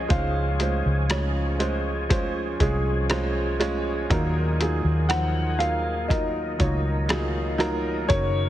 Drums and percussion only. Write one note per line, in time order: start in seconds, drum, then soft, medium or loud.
0.10 kick medium
0.10 closed hi-hat medium
0.60 closed hi-hat medium
1.10 cross-stick medium
1.10 closed hi-hat medium
1.60 closed hi-hat medium
2.10 kick medium
2.10 closed hi-hat medium
2.60 kick medium
2.60 closed hi-hat medium
3.10 cross-stick medium
3.10 closed hi-hat medium
3.61 cross-stick soft
3.61 closed hi-hat medium
4.10 kick medium
4.10 closed hi-hat medium
4.61 closed hi-hat medium
5.10 cross-stick medium
5.10 closed hi-hat medium
5.60 closed hi-hat medium
6.10 kick medium
6.10 closed hi-hat medium
6.60 kick medium
6.60 closed hi-hat medium
7.09 cross-stick medium
7.09 closed hi-hat medium
7.60 cross-stick soft
7.60 closed hi-hat soft
8.10 kick medium
8.10 closed hi-hat medium